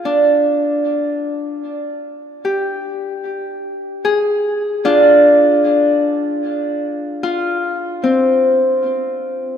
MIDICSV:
0, 0, Header, 1, 2, 480
1, 0, Start_track
1, 0, Tempo, 800000
1, 23, Time_signature, 4, 2, 24, 8
1, 5745, End_track
2, 0, Start_track
2, 0, Title_t, "Harp"
2, 0, Program_c, 0, 46
2, 0, Note_on_c, 0, 65, 41
2, 0, Note_on_c, 0, 68, 48
2, 31, Note_on_c, 0, 62, 49
2, 290, Note_off_c, 0, 68, 0
2, 1251, Note_off_c, 0, 65, 0
2, 1468, Note_on_c, 0, 67, 40
2, 1732, Note_off_c, 0, 62, 0
2, 2428, Note_on_c, 0, 68, 66
2, 2909, Note_on_c, 0, 62, 62
2, 2912, Note_on_c, 0, 65, 56
2, 3171, Note_off_c, 0, 67, 0
2, 4082, Note_off_c, 0, 68, 0
2, 4337, Note_off_c, 0, 65, 0
2, 4339, Note_on_c, 0, 65, 55
2, 4588, Note_off_c, 0, 62, 0
2, 4821, Note_on_c, 0, 60, 45
2, 5745, Note_off_c, 0, 60, 0
2, 5745, Note_off_c, 0, 65, 0
2, 5745, End_track
0, 0, End_of_file